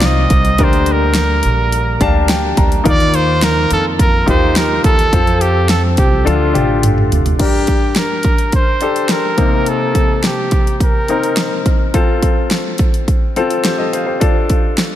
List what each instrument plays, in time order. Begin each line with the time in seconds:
Already playing: upright bass C2, grand piano C3 C4 D#4 F4 C5, tonewheel organ D#3 C4
0.01 snare, closed hi-hat
0.06 trumpet D#5
0.30 upright bass C2, kick, closed hi-hat
0.45 closed hi-hat
0.58 upright bass D2, grand piano D3 D4 G4 A#4, tonewheel organ G3 A#3, kick, closed hi-hat
0.64 trumpet C5
0.73 closed hi-hat
0.86 closed hi-hat
0.92 trumpet A#4
1.15 snare, closed hi-hat
1.43 upright bass A#1, closed hi-hat
1.72 closed hi-hat
2.01 upright bass D2, grand piano D4 G4 F5 A5, kick, closed hi-hat
2.29 grand piano G5, snare, closed hi-hat
2.57 upright bass D2, grand piano A#5, kick, closed hi-hat
2.72 closed hi-hat
2.84 upright bass D#2, grand piano D#3 D#4 F4 A#4, tonewheel organ D#3 F4, trumpet D5, kick, closed hi-hat
3.00 closed hi-hat
3.14 trumpet C5, closed hi-hat
3.42 trumpet A#4, snare, closed hi-hat
3.71 upright bass F2, trumpet A4, closed hi-hat
3.99 trumpet A#4, kick, closed hi-hat
4.26 upright bass D#2, grand piano D#4 F4 G4, trumpet C5, kick, closed hi-hat
4.56 trumpet A#4, snare, closed hi-hat
4.84 upright bass D#2, trumpet A4, kick, closed hi-hat
4.99 closed hi-hat
5.12 upright bass F2, tonewheel organ F3 C4 A4, grand piano C4 F4 A4, kick, closed hi-hat
5.27 closed hi-hat
5.41 trumpet G4, closed hi-hat
5.69 trumpet A4, snare, closed hi-hat
5.97 upright bass C2, trumpet G4, kick, closed hi-hat
6.25 upright bass D2, grand piano D3 D4 F4 A4, tonewheel organ D3 A3 F4, trumpet F4, closed hi-hat, high tom
6.53 upright bass A1, grand piano D4 F4 G4, closed hi-hat, mid tom
6.83 closed hi-hat, mid tom
6.98 mid tom
7.11 upright bass F1, closed hi-hat, floor tom
7.26 closed hi-hat, floor tom
7.39 grand piano G2 D4 G4 A#4, trumpet G4, kick, closed hi-hat, crash
7.67 kick, closed hi-hat
7.96 trumpet A#4, snare, closed hi-hat
8.23 kick, closed hi-hat
8.38 closed hi-hat
8.52 trumpet C5, kick, closed hi-hat
8.81 grand piano D4 G4 A4, closed hi-hat
8.96 closed hi-hat
9.09 trumpet A#4, snare, closed hi-hat
9.37 grand piano C3 A#3 C4 D#4, kick, closed hi-hat
9.66 trumpet A4, closed hi-hat
9.95 kick, closed hi-hat
10.24 trumpet G4, snare, closed hi-hat
10.51 kick, closed hi-hat
10.67 closed hi-hat
10.80 trumpet A#4, kick, closed hi-hat
11.08 grand piano C4 D#4 A#4, closed hi-hat
11.23 closed hi-hat
11.37 snare, closed hi-hat
11.66 kick, closed hi-hat
11.94 grand piano C4 F4 A4, kick, closed hi-hat
12.23 kick, closed hi-hat
12.51 snare, closed hi-hat
12.78 kick, closed hi-hat
12.94 closed hi-hat
13.08 kick, closed hi-hat
13.36 grand piano C4 F4 A4, closed hi-hat
13.50 closed hi-hat
13.65 grand piano G4 C5, snare, closed hi-hat
13.78 grand piano A4 D#5
13.93 grand piano C5 F5, closed hi-hat
14.06 grand piano G4 C5
14.20 grand piano D4 F4 A4, kick, closed hi-hat
14.49 kick, closed hi-hat
14.78 snare, closed hi-hat